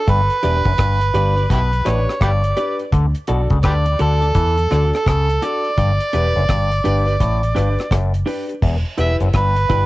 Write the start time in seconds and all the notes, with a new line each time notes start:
Already playing: A4
0.07 G1 G2 B4, kick, closed hi-hat
0.30 closed hi-hat
0.43 E1 E2 D4 G4 B4 D5, closed hi-hat
0.65 F#1 F#2, kick, closed hi-hat
0.78 G1 G2, kick, cross-stick, closed hi-hat
1.01 closed hi-hat
1.14 G1 G2 D4 G4 B4 D5, closed hi-hat
1.36 G4 B4 D5, closed hi-hat
1.50 B1 B2 E4 G4 B4, kick, closed hi-hat
1.73 closed hi-hat
1.85 A1 A2 D4 G4 B4 C#5 D5, cross-stick, closed hi-hat
2.09 cross-stick
2.21 G1 G2 G4 B4 D5, kick, cross-stick, closed hi-hat
2.44 closed hi-hat
2.57 D4 G4 B4 D5, closed hi-hat
2.79 closed hi-hat
2.92 D2 D3, kick, closed hi-hat
3.15 closed hi-hat
3.27 B1 B2 D4 F#4 A4 D5, closed hi-hat
3.50 C#2 C#3, kick, closed hi-hat
3.63 D2 D3 G4 B4 D5, kick, cross-stick, closed hi-hat
3.85 closed hi-hat
3.99 D2 D3 D4 F#4 A4 D5, closed hi-hat
4.22 F#4 A4 D5, closed hi-hat
4.35 E2 E3, kick, closed hi-hat
4.57 closed hi-hat
4.70 D2 D3 D4 F#4 A4 D5, cross-stick, closed hi-hat
4.93 A4, cross-stick, closed hi-hat
5.06 C#2 C#3 A4, kick, cross-stick, closed hi-hat
5.29 closed hi-hat
5.41 D4 F#4 A4 D5, closed hi-hat
5.64 closed hi-hat
5.77 G1 G2, kick, closed hi-hat
6.00 closed hi-hat
6.13 E1 E2 D4 G4 B4, closed hi-hat
6.36 F#1 F#2
6.49 G1 G2, kick, cross-stick, closed hi-hat
6.71 closed hi-hat
6.84 G1 G2 D4 G4 B4, closed hi-hat
7.06 D4 G4 B4, closed hi-hat
7.20 A1 A2, kick, closed hi-hat
7.43 closed hi-hat
7.55 G1 G2 D4 G4 B4, cross-stick, closed hi-hat
7.79 cross-stick, closed hi-hat
7.91 F#1 F#2, kick, cross-stick, closed hi-hat
8.14 closed hi-hat
8.26 D4 G4 B4, open hi-hat
8.50 closed hi-hat
8.63 E1 E2, kick, crash
8.98 E1 E2 E4 G4 B4 E5, closed hi-hat
9.20 F#1 F#2, closed hi-hat
9.34 G1 G2 B4, kick, cross-stick, closed hi-hat
9.56 closed hi-hat
9.69 G1 G2 E4 G4 B4, kick, closed hi-hat